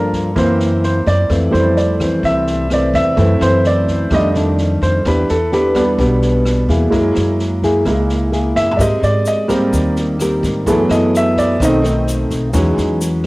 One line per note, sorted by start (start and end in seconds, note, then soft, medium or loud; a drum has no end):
0.00 0.33 G2 medium
0.00 0.34 G2 medium
0.00 0.32 F3 medium
0.00 0.33 A#3 medium
0.00 0.35 A#3 soft
0.00 0.33 D4 medium
0.00 0.39 F4 soft
0.00 0.39 A4 medium
0.00 0.38 A#4 medium
0.12 kick soft
0.12 snare soft
0.35 1.28 F#2 medium
0.35 1.03 F#2 medium
0.35 0.99 E3 medium
0.35 0.67 A#3 soft
0.35 1.00 A#3 medium
0.35 0.67 C4 soft
0.35 1.00 C4 medium
0.35 0.67 E4 soft
0.35 0.60 C5 medium
0.35 kick medium
0.35 cross-stick medium
0.35 snare soft
0.60 snare soft
0.83 1.07 C5 medium
0.83 snare soft
1.06 1.28 F#2 medium
1.06 1.51 D5 medium
1.06 kick soft
1.06 snare soft
1.29 2.21 F2 soft
1.29 1.52 F2 medium
1.29 1.77 E3 medium
1.29 1.77 A3 medium
1.29 1.77 C4 medium
1.29 kick medium
1.29 cross-stick medium
1.29 snare soft
1.51 2.20 F2 medium
1.51 2.19 G3 soft
1.51 2.20 A3 soft
1.51 2.20 E4 soft
1.51 1.76 C5 medium
1.51 snare soft
1.76 2.21 D5 medium
1.76 snare soft
2.00 2.67 E3 medium
2.00 2.67 A3 medium
2.00 2.68 C4 medium
2.00 kick soft
2.00 cross-stick medium
2.00 snare soft
2.23 2.90 C2 medium
2.23 3.15 C3 soft
2.23 2.47 E5 medium
2.23 kick medium
2.23 snare soft
2.47 snare soft
2.70 3.16 E3 medium
2.70 3.16 A3 medium
2.70 3.16 C4 medium
2.70 2.95 D5 medium
2.70 cross-stick medium
2.70 snare soft
2.94 3.16 E2 medium
2.94 3.38 E5 medium
2.94 kick soft
2.94 snare soft
3.17 3.39 F#2 loud
3.17 4.09 F#2 medium
3.17 3.32 E3 medium
3.17 4.07 A3 soft
3.17 3.32 A3 medium
3.17 4.07 C4 soft
3.17 3.32 C4 medium
3.17 4.08 E4 soft
3.17 kick medium
3.17 snare soft
3.41 4.08 F#2 medium
3.41 4.08 E3 medium
3.41 4.08 A3 medium
3.41 4.08 C4 medium
3.41 3.64 C5 medium
3.41 cross-stick medium
3.41 snare soft
3.64 4.09 D5 medium
3.64 snare soft
3.88 kick soft
3.88 snare soft
4.11 4.77 F2 medium
4.11 5.03 F2 medium
4.11 4.31 D#3 soft
4.11 4.78 G3 soft
4.11 4.79 A3 soft
4.11 4.32 A3 medium
4.11 4.79 D4 soft
4.11 4.32 D4 medium
4.11 4.27 D#5 medium
4.11 kick medium
4.11 cross-stick medium
4.11 snare soft
4.34 5.02 D#3 medium
4.34 5.02 A3 medium
4.34 5.02 D4 medium
4.34 snare soft
4.58 snare soft
4.82 5.04 F2 medium
4.82 5.05 C5 medium
4.82 kick soft
4.82 snare soft
5.05 5.27 E2 loud
5.05 5.97 E3 medium
5.05 5.36 B3 medium
5.05 5.36 D4 medium
5.05 5.36 G4 medium
5.05 5.29 B4 medium
5.05 kick medium
5.05 cross-stick medium
5.05 snare soft
5.29 5.95 E2 medium
5.29 5.52 A4 medium
5.29 snare soft
5.52 5.82 B3 medium
5.52 5.83 D4 medium
5.52 5.83 G4 medium
5.52 6.19 B4 medium
5.52 snare soft
5.75 6.42 G3 soft
5.75 6.42 B3 soft
5.75 6.43 D4 soft
5.75 kick soft
5.75 cross-stick medium
5.75 snare soft
5.99 6.65 B1 loud
5.99 6.90 B2 medium
5.99 6.66 B3 medium
5.99 6.66 D4 medium
5.99 6.66 G4 medium
5.99 kick medium
5.99 snare soft
6.22 snare soft
6.45 cross-stick medium
6.45 snare soft
6.69 6.91 E2 medium
6.69 7.59 A#3 medium
6.69 7.59 E4 medium
6.69 7.59 G#4 medium
6.69 kick soft
6.69 snare soft
6.90 7.14 F#2 medium
6.90 7.84 F#3 medium
6.90 7.23 G#3 soft
6.90 7.23 A#3 soft
6.90 7.23 E4 soft
6.90 kick medium
6.90 snare soft
7.15 7.83 F#2 medium
7.15 cross-stick medium
7.15 snare soft
7.39 snare soft
7.62 8.30 A#3 medium
7.62 8.30 E4 medium
7.62 8.30 G#4 medium
7.62 kick soft
7.62 snare soft
7.85 8.52 C#2 medium
7.85 8.78 C#3 soft
7.85 8.07 G#3 soft
7.85 8.07 A#3 soft
7.85 8.07 E4 soft
7.85 kick medium
7.85 cross-stick medium
7.85 snare soft
8.09 snare soft
8.32 8.78 A#3 medium
8.32 8.78 E4 medium
8.32 8.78 G#4 medium
8.32 snare soft
8.56 8.78 F#2 medium
8.56 8.79 E5 medium
8.56 snare soft
8.71 floor tom medium
8.77 9.01 G#2 medium
8.77 9.71 G#3 medium
8.77 9.46 C4 medium
8.77 9.46 G4 medium
8.77 9.47 A#4 medium
8.77 8.80 D5 soft
8.77 kick medium
8.77 cross-stick medium
8.77 snare soft
8.77 shaker medium
8.81 9.03 D#5 medium
9.02 9.69 G#2 medium
9.02 9.26 D5 medium
9.02 snare soft
9.02 shaker soft
9.25 9.93 D#5 medium
9.25 snare soft
9.25 shaker medium
9.48 10.62 G3 soft
9.48 10.62 A#3 soft
9.48 10.16 C4 medium
9.48 10.63 C4 soft
9.48 10.17 G4 medium
9.48 10.16 A#4 medium
9.48 kick soft
9.48 cross-stick medium
9.48 snare soft
9.48 shaker soft
9.73 10.39 D#2 medium
9.73 10.65 D#3 medium
9.73 kick medium
9.73 snare soft
9.73 shaker medium
9.96 snare soft
9.96 shaker soft
10.19 10.66 C4 medium
10.19 10.66 G4 medium
10.19 10.66 A#4 medium
10.19 cross-stick medium
10.19 snare soft
10.19 shaker medium
10.43 10.65 G#2 medium
10.43 kick soft
10.43 snare soft
10.43 shaker soft
10.66 10.89 F#2 medium
10.66 11.56 E3 soft
10.66 11.59 F#3 medium
10.66 11.57 A3 soft
10.66 11.57 B3 soft
10.66 10.81 B3 medium
10.66 10.81 E4 medium
10.66 11.57 G#4 soft
10.66 10.82 A4 medium
10.66 kick medium
10.66 snare soft
10.66 shaker medium
10.89 11.56 F#2 medium
10.89 11.57 B3 medium
10.89 11.58 E4 medium
10.89 11.58 A4 medium
10.89 11.13 D#5 medium
10.89 cross-stick medium
10.89 snare soft
10.89 shaker soft
11.14 11.38 E5 medium
11.14 snare soft
11.14 shaker medium
11.37 11.61 D5 medium
11.37 kick soft
11.37 snare soft
11.37 shaker soft
11.60 12.27 B1 medium
11.60 12.52 B2 medium
11.60 11.92 D#3 soft
11.60 11.81 A3 medium
11.60 11.92 A3 soft
11.60 11.81 C4 medium
11.60 11.93 C4 medium
11.60 11.81 D#4 medium
11.60 kick medium
11.60 cross-stick medium
11.60 snare soft
11.60 shaker medium
11.65 12.99 D#5 medium
11.83 12.50 A3 medium
11.83 12.51 C4 medium
11.83 12.51 D#4 medium
11.83 snare soft
11.83 shaker soft
12.07 snare soft
12.07 shaker medium
12.30 12.52 B1 medium
12.30 kick soft
12.30 snare soft
12.30 shaker soft
12.53 12.76 E2 loud
12.53 13.26 E3 medium
12.53 12.85 F#3 soft
12.53 12.85 G#3 soft
12.53 13.00 G#3 medium
12.53 12.85 C#4 soft
12.53 13.01 C#4 medium
12.53 13.01 D#4 medium
12.53 kick medium
12.53 cross-stick medium
12.53 snare soft
12.53 shaker medium
12.78 13.26 E2 medium
12.78 snare soft
12.78 shaker soft
13.01 snare soft
13.01 shaker medium